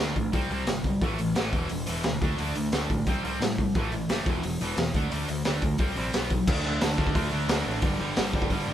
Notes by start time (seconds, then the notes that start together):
0.00 D2 D3 A3 D4
0.16 A1 D3 A3, kick, open hi-hat
0.33 C2 C3 G3 C4, kick, open hi-hat
0.50 C2 C3 G3 C4, open hi-hat
0.67 G1 C3 G3, snare, open hi-hat
0.84 C3 G3, kick, open hi-hat
1.01 A1 A2 E3 A3, kick, open hi-hat
1.18 A1 A2 E3, open hi-hat
1.36 A1 A2 E3 A3, snare, open hi-hat
1.52 E1 E2 B2 E3, kick, open hi-hat
1.69 E1 E2 B2, open hi-hat
1.86 E1 E2 B2 E3, open hi-hat
2.04 D2 E2 B2, snare, open hi-hat
2.21 D2 D3 A3 D4, kick, open hi-hat
2.38 D2 D3 A3 D4, open hi-hat
2.55 D2 D3 A3, open hi-hat
2.72 D2 D3 A3 D4, snare, open hi-hat
2.90 A1 D3 A3, kick, open hi-hat
3.07 C2 C3 G3 C4, kick, open hi-hat
3.23 C2 C3 G3 C4, open hi-hat
3.40 A2 C3 G3, snare, open hi-hat
3.58 C3 G3, kick, open hi-hat
3.75 A1 A2 E3 A3, kick, open hi-hat
3.91 A1 A2 E3, open hi-hat
4.08 F#1 A2 E3 A3, snare, open hi-hat
4.26 E1 E2 B2 E3, kick, open hi-hat
4.43 E1 E2 B2, open hi-hat
4.60 E1 E2 B2 E3, open hi-hat
4.76 E2 B2, snare, open hi-hat
4.94 D2 D3 A3 D4, kick, open hi-hat
5.11 D2 D3 A3 D4, open hi-hat
5.28 D2 D3 A3, open hi-hat
5.45 D2 D3 A3 D4, snare, open hi-hat
5.62 D2 D3 A3, kick, open hi-hat
5.78 C2 C3 G3 C4, kick, open hi-hat
5.96 A#1 C3 G3 C4, open hi-hat
6.13 B1 B2 F#3 B3, snare, open hi-hat
6.30 B2 F#3, kick, open hi-hat
6.47 D2 D3 A3 D4, kick, crash
6.65 D2 D3 A3 D4
6.81 D2 D3 A3 D4, snare, open hi-hat
6.98 D2 D3 A3 D4, kick
7.07 kick
7.15 D2 D3 A3 D4, kick, open hi-hat
7.32 D2 D3 A3 D4
7.48 D2 D3 A3 D4, snare, open hi-hat
7.66 A1 D3 A3 D4
7.82 G1 G2 D3 G3, kick, open hi-hat
8.00 G1 G2 D3 G3
8.16 G1 G2 D3 G3, snare, open hi-hat
8.33 G1 G2 D3 G3, kick
8.42 kick
8.50 G1 G2 D3 G3, kick, open hi-hat
8.67 G1 G2 D3 G3